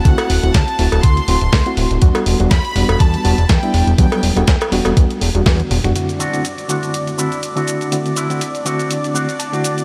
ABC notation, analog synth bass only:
X:1
M:4/4
L:1/16
Q:"Swing 16ths" 1/4=122
K:Dmix
V:1 name="Analog synth bass" clef=bass
D,, z D,,, D,,, D,, z D,,, D,,, D,, z D,,, D,,, D,, z D,,, D,,, | E,, z E,,, E,,, E,, z E,,, E,,, E,, z E,,, E,,, E,, z E,,, E,,, | E,, z E,,, E,,, E,, z E,,, E,,, E,, z E,,, E,,, E,, z E,,, E,,, | z16 |
z16 |]